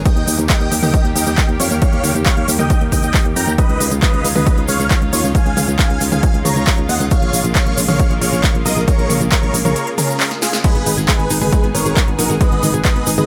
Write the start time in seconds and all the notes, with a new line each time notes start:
Already playing: D#3
0.05 G3 A#3 G4 D#5 G5, kick, closed hi-hat, shaker
0.16 D#2, closed hi-hat
0.27 D#2, open hi-hat, shaker
0.39 D#2, closed hi-hat, shaker
0.50 D#5 G5, kick, clap, closed hi-hat, shaker
0.61 D#2, closed hi-hat
0.72 D#2, open hi-hat, shaker
0.83 D#2 D#5 G5, open hi-hat, mid tom, shaker
0.94 kick, closed hi-hat, shaker
1.05 D#2, closed hi-hat
1.16 D#2 D#5 G5, open hi-hat, shaker
1.27 D#2, closed hi-hat, shaker
1.38 kick, clap, closed hi-hat, shaker
1.49 D#2, closed hi-hat
1.60 F2 C#5 F5, open hi-hat, shaker
1.71 D#2, closed hi-hat, shaker
1.82 C#5 F5, kick, closed hi-hat, shaker
1.93 D#2, closed hi-hat
2.04 D#2, open hi-hat, mid tom, shaker
2.15 D#2, closed hi-hat, shaker
2.26 C#5 F5, kick, clap, closed hi-hat, shaker
2.37 D#2, closed hi-hat
2.48 D#2, open hi-hat, shaker
2.59 D#2 D#5 G5, closed hi-hat, mid tom, shaker
2.70 kick, closed hi-hat, shaker
2.81 D#2, closed hi-hat
2.92 D#2 D#5 G5, kick, open hi-hat, mid tom, shaker
3.03 D#2, closed hi-hat, shaker
3.14 kick, clap, open hi-hat, shaker
3.25 D#2, closed hi-hat
3.36 F2 G5 A#5, open hi-hat, shaker
3.47 D#2, closed hi-hat, shaker
3.58 G#3 C#4 F4 B4 D#5, kick, closed hi-hat, shaker
3.69 C#2, closed hi-hat
3.80 C#2, open hi-hat, shaker
3.91 C#2, closed hi-hat, shaker
4.02 B4 D#5, kick, clap, closed hi-hat, shaker
4.13 C#2, closed hi-hat
4.24 C#2, open hi-hat, shaker
4.35 C#2 B4 D#5, open hi-hat, mid tom, shaker
4.46 kick, closed hi-hat, shaker
4.57 C#2, closed hi-hat
4.68 C#2 C#5 F5, open hi-hat, shaker
4.80 C#2, closed hi-hat, shaker
4.90 kick, clap, closed hi-hat, shaker
5.02 C#2, closed hi-hat
5.13 D#2 F4 C#5, open hi-hat, shaker
5.24 C#2, closed hi-hat, shaker
5.35 F5 G#5, kick, closed hi-hat, shaker
5.46 C#2, closed hi-hat
5.57 C#2, open hi-hat, mid tom, shaker
5.68 C#2, closed hi-hat, shaker
5.79 F5 G#5, kick, clap, closed hi-hat, shaker
5.90 C#2, closed hi-hat
6.01 C#2, open hi-hat, shaker
6.12 C#2 F5 G#5, closed hi-hat, mid tom, shaker
6.23 kick, closed hi-hat, shaker
6.34 C#2, closed hi-hat
6.45 C#2 C#5 A#5, open hi-hat, mid tom, shaker
6.56 C#2, closed hi-hat, shaker
6.67 kick, clap, open hi-hat, shaker
6.78 C#2, closed hi-hat
6.89 D#2 D#5 F#5, open hi-hat, shaker
7.00 C#2, closed hi-hat, shaker
7.11 C#3 A#3 C#5 F5, kick, closed hi-hat, shaker
7.22 A#1, closed hi-hat
7.33 A#1, open hi-hat, shaker
7.44 A#1, closed hi-hat, shaker
7.55 C#5 F5, kick, clap, closed hi-hat, shaker
7.66 A#1, closed hi-hat
7.77 A#1, open hi-hat, shaker
7.88 A#1 C#5 F5, open hi-hat, mid tom, shaker
7.99 kick, closed hi-hat, shaker
8.10 A#1, closed hi-hat
8.21 A#1 C#5 F5, open hi-hat, shaker
8.33 A#1, closed hi-hat, shaker
8.44 kick, clap, closed hi-hat, shaker
8.55 A#1, closed hi-hat
8.66 B1 A#4 D#5, open hi-hat, shaker
8.77 A#1, closed hi-hat, shaker
8.87 A#4 C#5, kick, closed hi-hat, shaker
8.99 A#1, closed hi-hat
9.10 A#1, open hi-hat, mid tom, shaker
9.21 A#1, closed hi-hat, shaker
9.32 A#4 C#5, kick, clap, closed hi-hat, shaker
9.43 A#1, closed hi-hat
9.54 A#1, open hi-hat, shaker
9.65 A#1 A#4 C#5, closed hi-hat, mid tom, shaker
9.76 closed hi-hat, shaker
9.87 closed hi-hat
9.98 C#4 A#4, open hi-hat, mid tom, shaker
10.09 closed hi-hat, shaker
10.20 clap, open hi-hat, shaker
10.31 snare, closed hi-hat
10.42 F4 G#4, snare, open hi-hat, shaker
10.53 snare, shaker
10.64 D#3 G#3 B3 G#4 B4, kick, closed hi-hat, crash, shaker
10.75 G#1 B3, closed hi-hat
10.86 G#1 D#4, open hi-hat, shaker
10.97 G#1 G#4, closed hi-hat, shaker
11.08 G#3 G#4 B4, kick, clap, closed hi-hat, shaker
11.19 G#1 B3, closed hi-hat
11.30 G#1 D#4, open hi-hat, shaker
11.41 G#1 G#4 B4, open hi-hat, mid tom, shaker
11.53 G#3, kick, closed hi-hat, shaker
11.64 G#1 B3, closed hi-hat
11.74 G#1 D#4 A#4 C#5, open hi-hat, shaker
11.86 G#1 G#4, closed hi-hat, shaker
11.97 G#3, kick, clap, closed hi-hat, shaker
12.08 G#1 B3, closed hi-hat
12.19 A#1 D#4 F#4 A#4, open hi-hat, shaker
12.30 G#1 G#4, closed hi-hat, shaker
12.41 G#3 B4 D#5, kick, closed hi-hat, shaker
12.52 G#1 B3, closed hi-hat
12.63 G#1 D#4, open hi-hat, mid tom, shaker
12.74 G#1 G#4, closed hi-hat, shaker
12.85 G#3 B4 D#5, kick, clap, closed hi-hat, shaker
12.96 G#1 B3, closed hi-hat
13.06 G#1 D#4, open hi-hat, shaker
13.18 G#1 G#4 B4 D#5, closed hi-hat, mid tom, shaker